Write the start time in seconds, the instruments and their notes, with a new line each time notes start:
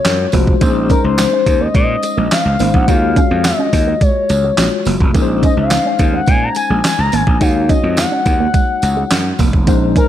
Already playing: tine electric piano G#3 F4 F#4, analog synth lead C#5
0.05 slap bass F#2, snare, clap, closed hi-hat, tambourine
0.32 slap bass F1, tine electric piano G#3 F4 F#4 C5, clean electric guitar A#3, kick, open hi-hat, tambourine
0.47 kick
0.61 slap bass A#1, tine electric piano G#3 C#4 D#4 C5, clean electric guitar A#3, kick, closed hi-hat, tambourine
0.76 muted clean electric guitar stroke
0.89 clean electric guitar C#4, analog synth lead A#4, kick, closed hi-hat, tambourine
1.04 slap bass C#2, analog synth lead C5
1.18 snare, clap, closed hi-hat, tambourine
1.32 clean electric guitar C#4
1.46 slap bass D#2, muted clean electric guitar stroke, kick, closed hi-hat, tambourine
1.60 clean electric guitar A#3, analog synth lead D#5
1.74 slap bass A#2, clean electric guitar G#3, analog synth lead D#5, kick, closed hi-hat, tambourine
2.03 muted clean electric guitar stroke, closed hi-hat, tambourine
2.17 slap bass A#1, clean electric guitar G#3
2.31 analog synth lead F5, snare, clap, closed hi-hat, tambourine
2.45 slap bass C#2
2.59 slap bass G#1, tine electric piano G#3 C#4 D#4 C5, clean electric guitar A#3, open hi-hat, tambourine
2.74 slap bass A#1, analog synth lead F#5, kick
2.87 slap bass D#2, tine electric piano G#3 F4 F#4 C#5, clean electric guitar D#4, analog synth lead F5, kick, closed hi-hat, tambourine
3.02 muted clean electric guitar stroke
3.16 clean electric guitar C#4, kick, closed hi-hat, tambourine
3.31 slap bass F2
3.44 analog synth lead D#5, snare, clap, closed hi-hat, tambourine
3.59 clean electric guitar C#4
3.73 slap bass D#2, muted clean electric guitar stroke, kick, open hi-hat, tambourine
3.87 clean electric guitar A#3
4.01 clean electric guitar G#3, analog synth lead C#5, kick, closed hi-hat, tambourine
4.29 slap bass C#2, muted clean electric guitar stroke, closed hi-hat, tambourine
4.44 clean electric guitar G#3
4.58 slap bass A#1, tine electric piano G#3 F4 F#4 C#5, snare, clap, closed hi-hat, tambourine
4.85 slap bass F#1, clean electric guitar A#3, open hi-hat, tambourine
5.00 slap bass F1, kick
5.14 slap bass A#1, tine electric piano G#3 C#4 D#4 A#4, clean electric guitar A#3, kick, closed hi-hat, tambourine
5.22 tine electric piano C5
5.29 muted clean electric guitar stroke
5.43 clean electric guitar C#4, analog synth lead D#5, kick, closed hi-hat, tambourine
5.57 slap bass C#2, analog synth lead F5
5.70 snare, clap, closed hi-hat, tambourine
5.85 clean electric guitar C#4
5.99 slap bass D#2, muted clean electric guitar stroke, kick, closed hi-hat, tambourine
6.13 clean electric guitar A#3, analog synth lead F#5
6.26 slap bass A#2, clean electric guitar G#3, analog synth lead G#5, kick, closed hi-hat, tambourine
6.43 analog synth lead A#5
6.55 analog synth lead G#5, muted clean electric guitar stroke, closed hi-hat, tambourine
6.70 slap bass A#1, clean electric guitar G#3
6.84 analog synth lead G#5, snare, clap, closed hi-hat, tambourine
6.99 slap bass C#2, analog synth lead A#5
7.12 slap bass G#1, clean electric guitar A#3, analog synth lead G#5, open hi-hat, tambourine
7.27 slap bass A#1, kick
7.40 slap bass D#2, tine electric piano G#3 D#4 F#4 C#5, clean electric guitar D#4, analog synth lead F5, kick, closed hi-hat, tambourine
7.55 muted clean electric guitar stroke
7.69 clean electric guitar C#4, analog synth lead D#5, kick, closed hi-hat, tambourine
7.83 slap bass F2
7.97 analog synth lead F#5, snare, clap, closed hi-hat, tambourine
8.12 clean electric guitar C#4
8.26 slap bass D#2, muted clean electric guitar stroke, kick, closed hi-hat, tambourine
8.40 clean electric guitar A#3
8.54 clean electric guitar G#3, kick, closed hi-hat, tambourine
8.82 slap bass C#2, muted clean electric guitar stroke, closed hi-hat, tambourine
8.97 clean electric guitar G#3
9.10 slap bass F#2, snare, clap, closed hi-hat, tambourine
9.39 slap bass F1, clean electric guitar A#3, kick, open hi-hat, tambourine
9.53 kick
9.67 slap bass A#1, tine electric piano G#3 C#4 D#4 C5, clean electric guitar A#3, kick, closed hi-hat, tambourine
9.81 muted clean electric guitar stroke
9.96 clean electric guitar C#4, analog synth lead A#4, kick, closed hi-hat, tambourine